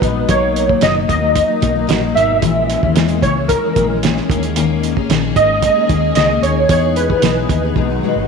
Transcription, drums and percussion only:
0, 0, Header, 1, 2, 480
1, 0, Start_track
1, 0, Tempo, 533808
1, 260, Time_signature, 4, 2, 24, 8
1, 7442, End_track
2, 0, Start_track
2, 0, Title_t, "Drums"
2, 18, Note_on_c, 9, 36, 98
2, 27, Note_on_c, 9, 42, 72
2, 107, Note_off_c, 9, 36, 0
2, 117, Note_off_c, 9, 42, 0
2, 258, Note_on_c, 9, 42, 85
2, 260, Note_on_c, 9, 36, 114
2, 347, Note_off_c, 9, 42, 0
2, 350, Note_off_c, 9, 36, 0
2, 506, Note_on_c, 9, 42, 69
2, 596, Note_off_c, 9, 42, 0
2, 624, Note_on_c, 9, 36, 84
2, 714, Note_off_c, 9, 36, 0
2, 730, Note_on_c, 9, 42, 89
2, 741, Note_on_c, 9, 38, 99
2, 820, Note_off_c, 9, 42, 0
2, 831, Note_off_c, 9, 38, 0
2, 981, Note_on_c, 9, 36, 88
2, 985, Note_on_c, 9, 42, 76
2, 1070, Note_off_c, 9, 36, 0
2, 1075, Note_off_c, 9, 42, 0
2, 1219, Note_on_c, 9, 36, 84
2, 1219, Note_on_c, 9, 42, 90
2, 1309, Note_off_c, 9, 36, 0
2, 1309, Note_off_c, 9, 42, 0
2, 1459, Note_on_c, 9, 42, 73
2, 1463, Note_on_c, 9, 36, 89
2, 1549, Note_off_c, 9, 42, 0
2, 1553, Note_off_c, 9, 36, 0
2, 1698, Note_on_c, 9, 42, 84
2, 1714, Note_on_c, 9, 38, 104
2, 1788, Note_off_c, 9, 42, 0
2, 1804, Note_off_c, 9, 38, 0
2, 1952, Note_on_c, 9, 42, 71
2, 2042, Note_off_c, 9, 42, 0
2, 2179, Note_on_c, 9, 42, 84
2, 2181, Note_on_c, 9, 36, 107
2, 2269, Note_off_c, 9, 42, 0
2, 2271, Note_off_c, 9, 36, 0
2, 2424, Note_on_c, 9, 42, 73
2, 2514, Note_off_c, 9, 42, 0
2, 2544, Note_on_c, 9, 36, 74
2, 2634, Note_off_c, 9, 36, 0
2, 2658, Note_on_c, 9, 42, 85
2, 2669, Note_on_c, 9, 38, 96
2, 2748, Note_off_c, 9, 42, 0
2, 2759, Note_off_c, 9, 38, 0
2, 2774, Note_on_c, 9, 42, 52
2, 2864, Note_off_c, 9, 42, 0
2, 2899, Note_on_c, 9, 36, 88
2, 2903, Note_on_c, 9, 42, 70
2, 2989, Note_off_c, 9, 36, 0
2, 2993, Note_off_c, 9, 42, 0
2, 3139, Note_on_c, 9, 36, 82
2, 3139, Note_on_c, 9, 42, 80
2, 3229, Note_off_c, 9, 36, 0
2, 3229, Note_off_c, 9, 42, 0
2, 3383, Note_on_c, 9, 36, 88
2, 3383, Note_on_c, 9, 42, 69
2, 3473, Note_off_c, 9, 36, 0
2, 3473, Note_off_c, 9, 42, 0
2, 3624, Note_on_c, 9, 42, 82
2, 3641, Note_on_c, 9, 38, 91
2, 3714, Note_off_c, 9, 42, 0
2, 3731, Note_off_c, 9, 38, 0
2, 3750, Note_on_c, 9, 38, 35
2, 3840, Note_off_c, 9, 38, 0
2, 3863, Note_on_c, 9, 36, 99
2, 3877, Note_on_c, 9, 42, 72
2, 3953, Note_off_c, 9, 36, 0
2, 3967, Note_off_c, 9, 42, 0
2, 3982, Note_on_c, 9, 42, 49
2, 4072, Note_off_c, 9, 42, 0
2, 4101, Note_on_c, 9, 42, 90
2, 4191, Note_off_c, 9, 42, 0
2, 4347, Note_on_c, 9, 42, 61
2, 4437, Note_off_c, 9, 42, 0
2, 4467, Note_on_c, 9, 36, 80
2, 4557, Note_off_c, 9, 36, 0
2, 4584, Note_on_c, 9, 42, 90
2, 4595, Note_on_c, 9, 38, 98
2, 4674, Note_off_c, 9, 42, 0
2, 4685, Note_off_c, 9, 38, 0
2, 4820, Note_on_c, 9, 36, 85
2, 4822, Note_on_c, 9, 42, 68
2, 4910, Note_off_c, 9, 36, 0
2, 4912, Note_off_c, 9, 42, 0
2, 5058, Note_on_c, 9, 36, 87
2, 5058, Note_on_c, 9, 42, 88
2, 5148, Note_off_c, 9, 36, 0
2, 5148, Note_off_c, 9, 42, 0
2, 5300, Note_on_c, 9, 42, 72
2, 5301, Note_on_c, 9, 36, 92
2, 5389, Note_off_c, 9, 42, 0
2, 5391, Note_off_c, 9, 36, 0
2, 5533, Note_on_c, 9, 42, 87
2, 5550, Note_on_c, 9, 38, 91
2, 5623, Note_off_c, 9, 42, 0
2, 5640, Note_off_c, 9, 38, 0
2, 5785, Note_on_c, 9, 42, 66
2, 5875, Note_off_c, 9, 42, 0
2, 6018, Note_on_c, 9, 42, 87
2, 6019, Note_on_c, 9, 36, 117
2, 6108, Note_off_c, 9, 36, 0
2, 6108, Note_off_c, 9, 42, 0
2, 6261, Note_on_c, 9, 42, 65
2, 6351, Note_off_c, 9, 42, 0
2, 6383, Note_on_c, 9, 36, 78
2, 6473, Note_off_c, 9, 36, 0
2, 6494, Note_on_c, 9, 42, 86
2, 6505, Note_on_c, 9, 38, 102
2, 6584, Note_off_c, 9, 42, 0
2, 6595, Note_off_c, 9, 38, 0
2, 6739, Note_on_c, 9, 36, 90
2, 6741, Note_on_c, 9, 42, 77
2, 6828, Note_off_c, 9, 36, 0
2, 6831, Note_off_c, 9, 42, 0
2, 6977, Note_on_c, 9, 36, 79
2, 7067, Note_off_c, 9, 36, 0
2, 7442, End_track
0, 0, End_of_file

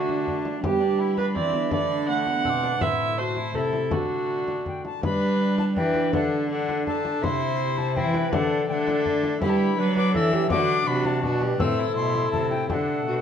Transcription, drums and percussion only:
0, 0, Header, 1, 2, 480
1, 0, Start_track
1, 0, Key_signature, 1, "major"
1, 0, Tempo, 365631
1, 831, Time_signature, 3, 2, 24, 8
1, 17349, End_track
2, 0, Start_track
2, 0, Title_t, "Frame drum"
2, 117, Note_on_c, 9, 64, 43
2, 248, Note_off_c, 9, 64, 0
2, 360, Note_on_c, 9, 64, 50
2, 491, Note_off_c, 9, 64, 0
2, 594, Note_on_c, 9, 64, 47
2, 725, Note_off_c, 9, 64, 0
2, 835, Note_on_c, 9, 64, 82
2, 967, Note_off_c, 9, 64, 0
2, 1545, Note_on_c, 9, 64, 47
2, 1676, Note_off_c, 9, 64, 0
2, 1785, Note_on_c, 9, 64, 53
2, 1916, Note_off_c, 9, 64, 0
2, 2016, Note_on_c, 9, 64, 48
2, 2147, Note_off_c, 9, 64, 0
2, 2250, Note_on_c, 9, 64, 76
2, 2381, Note_off_c, 9, 64, 0
2, 2976, Note_on_c, 9, 64, 45
2, 3107, Note_off_c, 9, 64, 0
2, 3215, Note_on_c, 9, 64, 48
2, 3346, Note_off_c, 9, 64, 0
2, 3459, Note_on_c, 9, 64, 46
2, 3591, Note_off_c, 9, 64, 0
2, 3691, Note_on_c, 9, 64, 78
2, 3822, Note_off_c, 9, 64, 0
2, 4420, Note_on_c, 9, 64, 42
2, 4552, Note_off_c, 9, 64, 0
2, 4651, Note_on_c, 9, 64, 48
2, 4782, Note_off_c, 9, 64, 0
2, 4897, Note_on_c, 9, 64, 46
2, 5029, Note_off_c, 9, 64, 0
2, 5136, Note_on_c, 9, 64, 76
2, 5267, Note_off_c, 9, 64, 0
2, 5876, Note_on_c, 9, 64, 44
2, 6007, Note_off_c, 9, 64, 0
2, 6117, Note_on_c, 9, 64, 47
2, 6249, Note_off_c, 9, 64, 0
2, 6365, Note_on_c, 9, 64, 46
2, 6496, Note_off_c, 9, 64, 0
2, 6606, Note_on_c, 9, 64, 90
2, 6737, Note_off_c, 9, 64, 0
2, 7329, Note_on_c, 9, 64, 51
2, 7460, Note_off_c, 9, 64, 0
2, 7567, Note_on_c, 9, 64, 59
2, 7699, Note_off_c, 9, 64, 0
2, 7804, Note_on_c, 9, 64, 52
2, 7935, Note_off_c, 9, 64, 0
2, 8050, Note_on_c, 9, 64, 80
2, 8181, Note_off_c, 9, 64, 0
2, 8782, Note_on_c, 9, 64, 45
2, 8913, Note_off_c, 9, 64, 0
2, 9018, Note_on_c, 9, 64, 52
2, 9150, Note_off_c, 9, 64, 0
2, 9255, Note_on_c, 9, 64, 51
2, 9387, Note_off_c, 9, 64, 0
2, 9499, Note_on_c, 9, 64, 83
2, 9630, Note_off_c, 9, 64, 0
2, 10213, Note_on_c, 9, 64, 47
2, 10345, Note_off_c, 9, 64, 0
2, 10456, Note_on_c, 9, 64, 57
2, 10587, Note_off_c, 9, 64, 0
2, 10690, Note_on_c, 9, 64, 56
2, 10822, Note_off_c, 9, 64, 0
2, 10930, Note_on_c, 9, 64, 90
2, 11062, Note_off_c, 9, 64, 0
2, 11654, Note_on_c, 9, 64, 49
2, 11785, Note_off_c, 9, 64, 0
2, 11890, Note_on_c, 9, 64, 51
2, 12021, Note_off_c, 9, 64, 0
2, 12124, Note_on_c, 9, 64, 52
2, 12255, Note_off_c, 9, 64, 0
2, 12361, Note_on_c, 9, 64, 85
2, 12492, Note_off_c, 9, 64, 0
2, 13079, Note_on_c, 9, 64, 47
2, 13210, Note_off_c, 9, 64, 0
2, 13321, Note_on_c, 9, 64, 57
2, 13452, Note_off_c, 9, 64, 0
2, 13560, Note_on_c, 9, 64, 54
2, 13691, Note_off_c, 9, 64, 0
2, 13787, Note_on_c, 9, 64, 88
2, 13918, Note_off_c, 9, 64, 0
2, 14502, Note_on_c, 9, 64, 54
2, 14634, Note_off_c, 9, 64, 0
2, 14744, Note_on_c, 9, 64, 50
2, 14875, Note_off_c, 9, 64, 0
2, 14989, Note_on_c, 9, 64, 51
2, 15120, Note_off_c, 9, 64, 0
2, 15226, Note_on_c, 9, 64, 87
2, 15357, Note_off_c, 9, 64, 0
2, 15950, Note_on_c, 9, 64, 47
2, 16082, Note_off_c, 9, 64, 0
2, 16192, Note_on_c, 9, 64, 56
2, 16323, Note_off_c, 9, 64, 0
2, 16425, Note_on_c, 9, 64, 48
2, 16556, Note_off_c, 9, 64, 0
2, 16667, Note_on_c, 9, 64, 76
2, 16798, Note_off_c, 9, 64, 0
2, 17349, End_track
0, 0, End_of_file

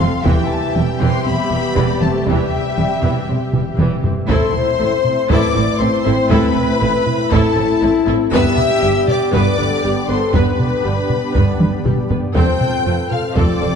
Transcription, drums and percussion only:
0, 0, Header, 1, 2, 480
1, 0, Start_track
1, 0, Key_signature, 0, "minor"
1, 0, Tempo, 504202
1, 245, Time_signature, 4, 2, 24, 8
1, 13094, End_track
2, 0, Start_track
2, 0, Title_t, "Taiko and cinematic ensemble drums"
2, 1, Note_on_c, 9, 47, 63
2, 96, Note_off_c, 9, 47, 0
2, 240, Note_on_c, 9, 41, 109
2, 336, Note_off_c, 9, 41, 0
2, 720, Note_on_c, 9, 47, 71
2, 815, Note_off_c, 9, 47, 0
2, 1681, Note_on_c, 9, 41, 93
2, 1777, Note_off_c, 9, 41, 0
2, 1922, Note_on_c, 9, 47, 58
2, 2017, Note_off_c, 9, 47, 0
2, 2161, Note_on_c, 9, 41, 113
2, 2256, Note_off_c, 9, 41, 0
2, 2644, Note_on_c, 9, 47, 73
2, 2739, Note_off_c, 9, 47, 0
2, 3365, Note_on_c, 9, 45, 92
2, 3461, Note_off_c, 9, 45, 0
2, 3605, Note_on_c, 9, 47, 91
2, 3700, Note_off_c, 9, 47, 0
2, 3846, Note_on_c, 9, 43, 106
2, 3941, Note_off_c, 9, 43, 0
2, 4084, Note_on_c, 9, 41, 120
2, 4179, Note_off_c, 9, 41, 0
2, 4322, Note_on_c, 9, 45, 61
2, 4418, Note_off_c, 9, 45, 0
2, 4800, Note_on_c, 9, 45, 54
2, 4896, Note_off_c, 9, 45, 0
2, 5042, Note_on_c, 9, 41, 96
2, 5138, Note_off_c, 9, 41, 0
2, 6005, Note_on_c, 9, 41, 117
2, 6100, Note_off_c, 9, 41, 0
2, 6245, Note_on_c, 9, 45, 69
2, 6341, Note_off_c, 9, 45, 0
2, 6725, Note_on_c, 9, 45, 63
2, 6821, Note_off_c, 9, 45, 0
2, 6965, Note_on_c, 9, 41, 86
2, 7060, Note_off_c, 9, 41, 0
2, 7924, Note_on_c, 9, 41, 125
2, 8019, Note_off_c, 9, 41, 0
2, 8163, Note_on_c, 9, 45, 67
2, 8258, Note_off_c, 9, 45, 0
2, 8644, Note_on_c, 9, 45, 62
2, 8739, Note_off_c, 9, 45, 0
2, 8884, Note_on_c, 9, 41, 94
2, 8979, Note_off_c, 9, 41, 0
2, 9843, Note_on_c, 9, 41, 112
2, 9938, Note_off_c, 9, 41, 0
2, 10083, Note_on_c, 9, 45, 66
2, 10178, Note_off_c, 9, 45, 0
2, 10565, Note_on_c, 9, 45, 62
2, 10660, Note_off_c, 9, 45, 0
2, 10804, Note_on_c, 9, 41, 86
2, 10899, Note_off_c, 9, 41, 0
2, 11045, Note_on_c, 9, 47, 89
2, 11140, Note_off_c, 9, 47, 0
2, 11285, Note_on_c, 9, 45, 103
2, 11381, Note_off_c, 9, 45, 0
2, 11523, Note_on_c, 9, 43, 105
2, 11619, Note_off_c, 9, 43, 0
2, 11761, Note_on_c, 9, 41, 118
2, 11856, Note_off_c, 9, 41, 0
2, 12003, Note_on_c, 9, 45, 66
2, 12098, Note_off_c, 9, 45, 0
2, 12482, Note_on_c, 9, 45, 55
2, 12578, Note_off_c, 9, 45, 0
2, 12724, Note_on_c, 9, 41, 92
2, 12819, Note_off_c, 9, 41, 0
2, 13094, End_track
0, 0, End_of_file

